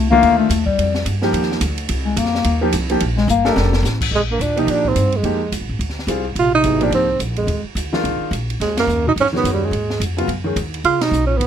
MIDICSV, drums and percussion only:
0, 0, Header, 1, 2, 480
1, 0, Start_track
1, 0, Tempo, 279590
1, 1329, Time_signature, 4, 2, 24, 8
1, 19690, End_track
2, 0, Start_track
2, 0, Title_t, "Drums"
2, 184, Note_on_c, 9, 36, 60
2, 356, Note_off_c, 9, 36, 0
2, 391, Note_on_c, 9, 51, 64
2, 563, Note_off_c, 9, 51, 0
2, 867, Note_on_c, 9, 44, 66
2, 867, Note_on_c, 9, 51, 80
2, 1038, Note_off_c, 9, 44, 0
2, 1038, Note_off_c, 9, 51, 0
2, 1142, Note_on_c, 9, 36, 67
2, 1313, Note_off_c, 9, 36, 0
2, 1354, Note_on_c, 9, 51, 69
2, 1526, Note_off_c, 9, 51, 0
2, 1624, Note_on_c, 9, 38, 57
2, 1795, Note_off_c, 9, 38, 0
2, 1819, Note_on_c, 9, 44, 58
2, 1819, Note_on_c, 9, 51, 80
2, 1991, Note_off_c, 9, 44, 0
2, 1991, Note_off_c, 9, 51, 0
2, 2091, Note_on_c, 9, 38, 45
2, 2262, Note_off_c, 9, 38, 0
2, 2299, Note_on_c, 9, 51, 70
2, 2442, Note_on_c, 9, 38, 34
2, 2471, Note_off_c, 9, 51, 0
2, 2602, Note_off_c, 9, 38, 0
2, 2602, Note_on_c, 9, 38, 47
2, 2763, Note_on_c, 9, 44, 66
2, 2763, Note_on_c, 9, 51, 87
2, 2773, Note_off_c, 9, 38, 0
2, 2935, Note_off_c, 9, 44, 0
2, 2935, Note_off_c, 9, 51, 0
2, 3050, Note_on_c, 9, 51, 59
2, 3221, Note_off_c, 9, 51, 0
2, 3239, Note_on_c, 9, 51, 77
2, 3410, Note_off_c, 9, 51, 0
2, 3723, Note_on_c, 9, 44, 60
2, 3723, Note_on_c, 9, 51, 80
2, 3868, Note_on_c, 9, 38, 31
2, 3895, Note_off_c, 9, 44, 0
2, 3895, Note_off_c, 9, 51, 0
2, 4033, Note_off_c, 9, 38, 0
2, 4033, Note_on_c, 9, 38, 59
2, 4196, Note_on_c, 9, 51, 80
2, 4204, Note_off_c, 9, 38, 0
2, 4367, Note_off_c, 9, 51, 0
2, 4678, Note_on_c, 9, 44, 57
2, 4678, Note_on_c, 9, 51, 87
2, 4850, Note_off_c, 9, 44, 0
2, 4850, Note_off_c, 9, 51, 0
2, 4969, Note_on_c, 9, 51, 57
2, 5141, Note_off_c, 9, 51, 0
2, 5157, Note_on_c, 9, 51, 75
2, 5329, Note_off_c, 9, 51, 0
2, 5451, Note_on_c, 9, 38, 39
2, 5623, Note_off_c, 9, 38, 0
2, 5643, Note_on_c, 9, 44, 70
2, 5815, Note_off_c, 9, 44, 0
2, 5923, Note_on_c, 9, 38, 76
2, 6095, Note_off_c, 9, 38, 0
2, 6121, Note_on_c, 9, 38, 97
2, 6293, Note_off_c, 9, 38, 0
2, 6405, Note_on_c, 9, 38, 81
2, 6577, Note_off_c, 9, 38, 0
2, 6606, Note_on_c, 9, 38, 63
2, 6607, Note_on_c, 9, 44, 65
2, 6777, Note_off_c, 9, 38, 0
2, 6779, Note_off_c, 9, 44, 0
2, 6883, Note_on_c, 9, 36, 87
2, 6892, Note_on_c, 9, 49, 95
2, 7054, Note_off_c, 9, 36, 0
2, 7064, Note_off_c, 9, 49, 0
2, 7569, Note_on_c, 9, 44, 60
2, 7569, Note_on_c, 9, 51, 62
2, 7741, Note_off_c, 9, 44, 0
2, 7741, Note_off_c, 9, 51, 0
2, 7852, Note_on_c, 9, 51, 48
2, 8023, Note_off_c, 9, 51, 0
2, 8035, Note_on_c, 9, 51, 67
2, 8206, Note_off_c, 9, 51, 0
2, 8321, Note_on_c, 9, 36, 56
2, 8493, Note_off_c, 9, 36, 0
2, 8511, Note_on_c, 9, 44, 62
2, 8511, Note_on_c, 9, 51, 69
2, 8683, Note_off_c, 9, 44, 0
2, 8683, Note_off_c, 9, 51, 0
2, 8796, Note_on_c, 9, 51, 44
2, 8968, Note_off_c, 9, 51, 0
2, 8992, Note_on_c, 9, 51, 56
2, 9163, Note_off_c, 9, 51, 0
2, 9483, Note_on_c, 9, 44, 60
2, 9483, Note_on_c, 9, 51, 67
2, 9654, Note_off_c, 9, 44, 0
2, 9654, Note_off_c, 9, 51, 0
2, 9968, Note_on_c, 9, 51, 56
2, 10121, Note_on_c, 9, 38, 28
2, 10139, Note_off_c, 9, 51, 0
2, 10285, Note_off_c, 9, 38, 0
2, 10285, Note_on_c, 9, 38, 39
2, 10442, Note_on_c, 9, 44, 52
2, 10442, Note_on_c, 9, 51, 70
2, 10456, Note_off_c, 9, 38, 0
2, 10614, Note_off_c, 9, 44, 0
2, 10614, Note_off_c, 9, 51, 0
2, 10920, Note_on_c, 9, 51, 57
2, 11091, Note_off_c, 9, 51, 0
2, 11393, Note_on_c, 9, 44, 52
2, 11393, Note_on_c, 9, 51, 69
2, 11565, Note_off_c, 9, 44, 0
2, 11565, Note_off_c, 9, 51, 0
2, 11686, Note_on_c, 9, 51, 46
2, 11857, Note_off_c, 9, 51, 0
2, 11887, Note_on_c, 9, 51, 62
2, 12058, Note_off_c, 9, 51, 0
2, 12360, Note_on_c, 9, 44, 56
2, 12360, Note_on_c, 9, 51, 66
2, 12532, Note_off_c, 9, 44, 0
2, 12532, Note_off_c, 9, 51, 0
2, 12643, Note_on_c, 9, 51, 47
2, 12814, Note_off_c, 9, 51, 0
2, 12842, Note_on_c, 9, 51, 59
2, 13014, Note_off_c, 9, 51, 0
2, 13331, Note_on_c, 9, 44, 65
2, 13331, Note_on_c, 9, 51, 65
2, 13503, Note_off_c, 9, 44, 0
2, 13503, Note_off_c, 9, 51, 0
2, 13619, Note_on_c, 9, 38, 55
2, 13790, Note_off_c, 9, 38, 0
2, 13818, Note_on_c, 9, 51, 56
2, 13989, Note_off_c, 9, 51, 0
2, 14301, Note_on_c, 9, 44, 61
2, 14301, Note_on_c, 9, 51, 63
2, 14473, Note_off_c, 9, 44, 0
2, 14473, Note_off_c, 9, 51, 0
2, 14592, Note_on_c, 9, 51, 49
2, 14764, Note_off_c, 9, 51, 0
2, 14785, Note_on_c, 9, 38, 36
2, 14786, Note_on_c, 9, 51, 60
2, 14956, Note_off_c, 9, 38, 0
2, 14958, Note_off_c, 9, 51, 0
2, 15062, Note_on_c, 9, 38, 78
2, 15064, Note_on_c, 9, 51, 67
2, 15234, Note_off_c, 9, 38, 0
2, 15235, Note_off_c, 9, 51, 0
2, 15262, Note_on_c, 9, 44, 62
2, 15434, Note_off_c, 9, 44, 0
2, 15751, Note_on_c, 9, 51, 64
2, 15899, Note_on_c, 9, 38, 29
2, 15922, Note_off_c, 9, 51, 0
2, 16057, Note_off_c, 9, 38, 0
2, 16057, Note_on_c, 9, 38, 40
2, 16227, Note_on_c, 9, 44, 54
2, 16227, Note_on_c, 9, 51, 64
2, 16229, Note_off_c, 9, 38, 0
2, 16398, Note_off_c, 9, 44, 0
2, 16398, Note_off_c, 9, 51, 0
2, 16706, Note_on_c, 9, 51, 59
2, 16878, Note_off_c, 9, 51, 0
2, 16999, Note_on_c, 9, 38, 51
2, 17170, Note_off_c, 9, 38, 0
2, 17192, Note_on_c, 9, 44, 54
2, 17192, Note_on_c, 9, 51, 73
2, 17364, Note_off_c, 9, 44, 0
2, 17364, Note_off_c, 9, 51, 0
2, 17482, Note_on_c, 9, 51, 50
2, 17654, Note_off_c, 9, 51, 0
2, 17664, Note_on_c, 9, 51, 58
2, 17836, Note_off_c, 9, 51, 0
2, 18137, Note_on_c, 9, 44, 54
2, 18137, Note_on_c, 9, 51, 70
2, 18308, Note_off_c, 9, 44, 0
2, 18308, Note_off_c, 9, 51, 0
2, 18437, Note_on_c, 9, 51, 50
2, 18609, Note_off_c, 9, 51, 0
2, 18617, Note_on_c, 9, 51, 58
2, 18789, Note_off_c, 9, 51, 0
2, 18906, Note_on_c, 9, 38, 82
2, 18908, Note_on_c, 9, 51, 65
2, 19078, Note_off_c, 9, 38, 0
2, 19079, Note_off_c, 9, 51, 0
2, 19101, Note_on_c, 9, 44, 65
2, 19272, Note_off_c, 9, 44, 0
2, 19586, Note_on_c, 9, 51, 66
2, 19690, Note_off_c, 9, 51, 0
2, 19690, End_track
0, 0, End_of_file